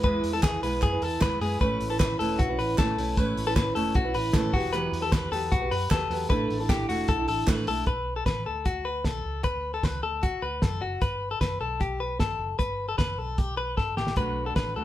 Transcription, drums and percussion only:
0.03 kick loud
0.03 closed hi-hat medium
0.24 open hi-hat medium
0.43 kick loud
0.43 snare loud
0.43 clap medium
0.43 closed hi-hat medium
0.63 open hi-hat medium
0.82 kick loud
0.82 clap medium
0.82 closed hi-hat medium
1.02 open hi-hat medium
1.21 kick loud
1.21 snare loud
1.21 clap medium
1.21 closed hi-hat medium
1.41 open hi-hat medium
1.61 kick loud
1.61 closed hi-hat medium
1.81 open hi-hat medium
2.00 kick loud
2.00 snare loud
2.00 clap medium
2.00 closed hi-hat medium
2.20 open hi-hat medium
2.39 kick loud
2.39 closed hi-hat medium
2.59 open hi-hat medium
2.78 kick loud
2.78 snare loud
2.78 clap medium
2.78 closed hi-hat medium
2.98 open hi-hat medium
3.17 kick loud
3.17 closed hi-hat medium
3.37 open hi-hat medium
3.56 kick loud
3.56 snare loud
3.56 clap medium
3.56 closed hi-hat medium
3.76 open hi-hat medium
3.95 kick loud
3.95 closed hi-hat medium
4.14 open hi-hat medium
4.33 kick loud
4.33 snare loud
4.33 clap medium
4.33 closed hi-hat medium
4.54 kick loud
4.54 open hi-hat medium
4.73 closed hi-hat medium
4.93 open hi-hat medium
5.12 kick loud
5.12 snare loud
5.12 clap medium
5.12 closed hi-hat medium
5.33 open hi-hat medium
5.52 kick loud
5.52 closed hi-hat medium
5.72 open hi-hat medium
5.91 kick loud
5.91 snare loud
5.91 clap medium
5.91 closed hi-hat medium
6.11 open hi-hat medium
6.30 kick loud
6.30 closed hi-hat medium
6.50 open hi-hat medium
6.69 kick loud
6.69 snare loud
6.69 clap medium
6.69 closed hi-hat medium
6.89 open hi-hat medium
7.08 kick loud
7.08 closed hi-hat medium
7.28 open hi-hat medium
7.47 kick loud
7.47 snare loud
7.47 clap medium
7.47 closed hi-hat medium
7.67 open hi-hat medium
7.86 kick loud
7.86 closed hi-hat medium
8.26 kick loud
8.26 snare loud
8.26 closed hi-hat medium
8.65 kick medium
8.65 closed hi-hat medium
9.04 kick medium
9.04 snare medium
9.04 closed hi-hat medium
9.43 kick loud
9.43 closed hi-hat medium
9.83 kick medium
9.83 snare loud
9.83 closed hi-hat medium
10.23 kick medium
10.23 closed hi-hat medium
10.62 kick loud
10.62 snare medium
10.62 closed hi-hat medium
11.01 kick loud
11.01 closed hi-hat medium
11.41 kick medium
11.41 snare loud
11.41 closed hi-hat medium
11.81 kick medium
11.81 closed hi-hat medium
12.19 kick medium
12.19 snare loud
12.19 closed hi-hat medium
12.59 kick loud
12.59 closed hi-hat medium
12.99 kick loud
12.99 snare loud
12.99 closed hi-hat medium
13.38 kick loud
13.38 closed hi-hat medium
13.78 kick medium
13.78 snare soft
13.97 snare medium
14.07 snare medium
14.16 kick loud
14.16 closed hi-hat medium
14.56 kick loud
14.56 snare loud
14.56 closed hi-hat medium

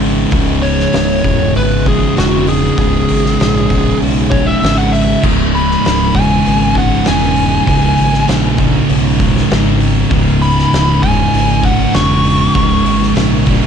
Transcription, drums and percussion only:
0.01 open hi-hat medium
0.31 kick loud
0.31 open hi-hat medium
0.63 open hi-hat medium
0.80 snare soft
0.93 snare loud
0.93 open hi-hat medium
1.24 kick medium
1.24 open hi-hat medium
1.55 open hi-hat medium
1.86 kick medium
1.86 open hi-hat medium
2.17 snare loud
2.17 open hi-hat medium
2.47 open hi-hat medium
2.77 kick loud
2.77 open hi-hat medium
3.09 open hi-hat medium
3.25 snare soft
3.40 snare loud
3.40 open hi-hat medium
3.70 kick medium
3.70 open hi-hat medium
4.02 open hi-hat medium
4.31 kick loud
4.31 open hi-hat medium
4.63 snare loud
4.63 open hi-hat medium
4.94 open hi-hat medium
5.24 kick loud
5.24 crash loud
5.55 open hi-hat medium
5.71 snare soft
5.85 snare loud
5.85 open hi-hat medium
6.15 kick medium
6.15 open hi-hat medium
6.45 open hi-hat medium
6.75 kick medium
6.75 open hi-hat medium
7.05 snare loud
7.05 open hi-hat medium
7.36 open hi-hat medium
7.67 kick loud
7.67 open hi-hat medium
7.97 open hi-hat medium
8.14 snare soft
8.28 snare loud
8.28 open hi-hat medium
8.58 kick medium
8.58 open hi-hat medium
8.89 open hi-hat medium
9.20 kick medium
9.20 open hi-hat medium
9.37 snare soft
9.50 snare loud
9.50 open hi-hat medium
9.80 open hi-hat medium
10.10 kick loud
10.10 open hi-hat medium
10.42 open hi-hat medium
10.59 snare soft
10.73 snare loud
10.73 open hi-hat medium
11.03 kick medium
11.03 open hi-hat medium
11.34 open hi-hat medium
11.64 kick medium
11.64 open hi-hat medium
11.93 snare loud
11.93 open hi-hat medium
12.24 open hi-hat medium
12.55 kick loud
12.55 open hi-hat medium
12.86 open hi-hat medium
13.02 snare soft
13.16 snare loud
13.16 open hi-hat medium
13.46 kick loud
13.46 open hi-hat medium

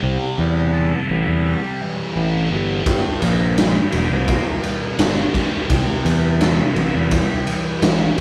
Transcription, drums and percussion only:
2.86 kick loud
2.86 ride medium
3.22 ride medium
3.58 snare loud
3.58 ride loud
3.92 ride medium
4.28 kick loud
4.28 ride medium
4.63 ride medium
4.99 snare loud
4.99 ride loud
5.34 kick medium
5.34 ride medium
5.70 kick loud
5.70 ride medium
6.06 ride medium
6.41 snare loud
6.41 ride loud
6.76 ride medium
7.11 kick loud
7.11 ride medium
7.47 ride medium
7.82 snare loud
7.82 ride loud

